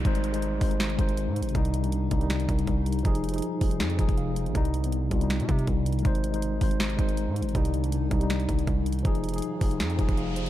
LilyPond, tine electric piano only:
\new Staff \with { instrumentName = "Tine electric piano" } { \time 4/4 \key c \minor \tempo 4 = 160 << { r1 | r1 | r2. f''8 c''8 | r1 |
r1 | r1 | r2. f''8 c''8 | } \\ { <aes ees' c''>8. <aes ees' c''>8. <aes ees' c''>4 <aes ees' c''>4~ <aes ees' c''>16 r16 | <c g ees'>8. <c g d'>8. <c g ees'>16 <c g ees'>4.~ <c g ees'>16 r8 | <f ees' aes'>8. <f ees' aes'>8. <f ees' aes'>4 <f ees' aes'>4~ <f ees' aes'>16 r16 | <c g ees'>8. <c g b>8. <c g f'>16 <c g ees'>4.~ <c g ees'>16 r8 |
<aes ees' c''>8. <aes ees' c''>8. <aes ees' c''>4 <aes ees' c''>4~ <aes ees' c''>16 r16 | <c g ees'>8. <c g d'>8. <c g ees'>16 <c g ees'>4.~ <c g ees'>16 r8 | <f ees' aes'>8. <f ees' aes'>8. <f ees' aes'>4 <f ees' aes'>4~ <f ees' aes'>16 r16 | } >> }